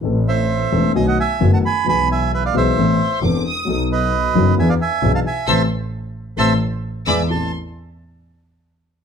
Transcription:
<<
  \new Staff \with { instrumentName = "Violin section" } { \time 4/4 \key a \minor \tempo 4 = 132 r1 | r2 r8 c'''8 d'''8 dis'''8~ | dis'''16 r2. r8. | <a'' c''' e'''>8 r4. <a'' c''' e'''>8 r4 <b'' d''' e'''>8 |
c'''8 r2. r8 | }
  \new Staff \with { instrumentName = "Bandoneon" } { \time 4/4 \key a \minor r8 <c'' e''>4. <dis'' gis''>16 <dis'' fis''>16 <e'' gis''>8. <fis'' a''>16 <gis'' b''>8 | <gis'' b''>8 <e'' gis''>8 <b' e''>16 <d'' f''>16 <c'' e''>4. r4 | r8 <b' dis''>4. <e'' gis''>16 <d'' f''>16 <e'' gis''>8. <f'' a''>16 <e'' gis''>8 | <c'' e'' a''>8 r4. <c'' e'' a''>8 r4 <d'' e'' gis''>8 |
a''8 r2. r8 | }
  \new Staff \with { instrumentName = "Grand piano" } { \clef bass \time 4/4 \key a \minor <a,, a, e a c' a'>4. <e,, e, e a c' a'>8 <b,, b, dis a b fis'>8 r8 <fis,, fis, dis a b fis'>8 r8 | <b,, b, e gis b gis'>4. <b,, b, e gis b gis'>8 <a,, a, e b c' a'>8 r8 <e,, e, e b c' a'>8 r8 | <b,, b, fis b dis' a'>4. <fis,, fis, fis b dis' a'>8 <e, e b d' gis'>8 r8 <b,, b, e b d' gis'>8 r8 | <c e a>8 r4. <c e a>8 r4 <e gis b>8 |
<a,, c' e' a'>8 r2. r8 | }
  \new Staff \with { instrumentName = "Double bass" } { \clef bass \time 4/4 \key a \minor a,,4. e,,8 b,,8 r8 fis,,8 r8 | b,,4. b,,8 a,,8 r8 e,,8 r8 | b,,4. fis,,8 e,8 r8 b,,8 r8 | a,,8 r4. a,,8 r4 e,8 |
a,,8 r2. r8 | }
>>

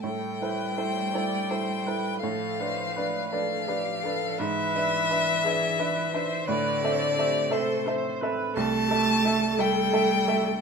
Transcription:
<<
  \new Staff \with { instrumentName = "Violin" } { \time 6/8 \key a \minor \tempo 4. = 57 g''2. | f''4. f''4. | e''2. | d''4. c''8 r4 |
\key a \dorian a''4. g''4. | }
  \new Staff \with { instrumentName = "Viola" } { \time 6/8 \key a \minor a'8 b'8 c''8 d''8 c''8 b'8 | a'8 c''8 b'8 a'8 g'8 a'8 | b'4. gis'8 b'8 c''8 | b'8 a'8 g'8 a'8 c''8 b'8 |
\key a \dorian a'8 g'8 a'2 | }
  \new Staff \with { instrumentName = "Grand piano" } { \time 6/8 \key a \minor a,8 <e' a' c''>8 <e' a' c''>8 <e' a' c''>8 <e' a' c''>8 <e' a' c''>8 | a,8 <d' b' d''>8 <d' b' d''>8 <d' b' d''>8 <d' b' d''>8 <d' b' d''>8 | gis,8 <d' b' e''>8 <d' b' e''>8 <d' b' e''>8 <d' b' e''>8 <d' b' e''>8 | a,8 <c' a' e''>8 <c' a' e''>8 <c' a' e''>8 <c' a' e''>8 <c' a' e''>8 |
\key a \dorian c,8 <a a' e''>8 <a a' e''>8 <a a' e''>8 <a a' e''>8 <a a' e''>8 | }
  \new Staff \with { instrumentName = "Cello" } { \clef bass \time 6/8 \key a \minor g2. | f4. f4. | e2. | d4. c8 r4 |
\key a \dorian a4. g4. | }
>>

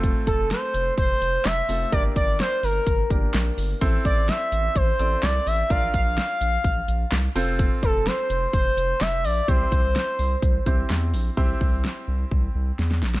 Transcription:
<<
  \new Staff \with { instrumentName = "Analog synth lead" } { \time 4/4 \key c \mixolydian \tempo 4 = 127 r8 a'8 c''4 c''4 e''4 | d''8 d''8 c''8 bes'4 r4. | r8 d''8 e''4 c''4 d''8 e''8 | f''8 f''2. r8 |
r8 a'8 c''4 c''4 e''8 d''8 | c''2. r4 | r1 | }
  \new Staff \with { instrumentName = "Grand piano" } { \time 4/4 \key c \mixolydian <a c' f' a'>2.~ <a c' f' a'>8 <a c' f' a'>8 | <bes d' g' bes'>2~ <bes d' g' bes'>8 <bes d' g' bes'>4. | <c' e' a' c''>2~ <c' e' a' c''>8 <c' e' a' d''>4. | <d' f' bes' d''>2.~ <d' f' bes' d''>8 <c' f' a' c''>8~ |
<c' f' a' c''>2.~ <c' f' a' c''>8 r8 | <c' e' g' c''>2~ <c' e' g' c''>8 <c' e' g' c''>4. | <c' e' g' c''>1 | }
  \new Staff \with { instrumentName = "Analog synth bass" } { \clef bass \time 4/4 \key c \mixolydian f,,8 f,,8. r16 f,,8 f,,8 f,,8 f,,8 f,,8 | g,,8 g,,8. r16 g,,8 g,,8 g,,8 bes,,8 g,,8 | a,,8 a,,8. r16 a,,8 a,,8 a,,8 c,8 a,,8 | bes,,8 bes,,8. r16 bes,,8 bes,,8 bes,,8 c,8 f,,8~ |
f,,8 f,,8. r16 f,,8 f,,8 f,,8 f,,8 bes,,8 | c,8 c,8. r16 c,8 c,8 c,8 e,8 bes,,8 | c,8 c,8. r16 c,8 c,8 c,8 e,8 bes,,8 | }
  \new DrumStaff \with { instrumentName = "Drums" } \drummode { \time 4/4 <hh bd>8 <hh bd>8 <hh sn>8 hh8 <hh bd>8 hh8 <hc hh sn>8 hho8 | <hh bd>8 <hh bd>8 <hh sn>8 hho8 <hh bd>8 <hh bd>8 <hc hh sn>8 hho8 | <hh bd>8 <hh bd>8 <hh sn>8 hh8 <hh bd>8 hh8 <hc hh sn>8 hho8 | <hh bd>8 <hh bd>8 <hh sn>8 hh8 <hh bd>8 hh8 <hc hh sn>8 hho8 |
<hh bd>8 <hh bd>8 <hh sn>8 hh8 <hh bd>8 hh8 <hc hh sn>8 hho8 | <hh bd>8 <hh bd>8 <hh sn>8 hho8 <hh bd>8 <hh bd>8 <hc hh sn>8 hho8 | bd8 bd8 sn4 bd4 sn16 sn16 sn16 sn16 | }
>>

